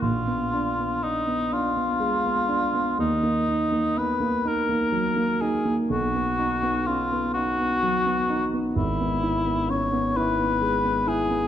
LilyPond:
<<
  \new Staff \with { instrumentName = "Cor anglais" } { \time 6/8 \key ees \minor \tempo 4. = 42 f'4 ees'8 f'4. | ees'4 ces''8 bes'4 aes'8 | fis'4 f'8 fis'4 r8 | e'4 des''8 b'4 gis'8 | }
  \new Staff \with { instrumentName = "Grand piano" } { \time 6/8 \key ees \minor bes,,16 ces'16 d'16 ces'16 d'16 ces'16 d'16 ces'16 aes16 ces'16 d'16 ces'16 | ees,16 bes16 ees'16 bes16 ces'16 bes16 ees'16 bes16 ges16 bes16 ees'16 bes16 | b,,16 b16 dis'16 b16 des'16 b16 dis'16 b16 fis16 b16 dis'16 b16 | gis,,16 b16 e'16 b16 des'16 b16 e'16 b16 gis16 b16 e'16 b16 | }
>>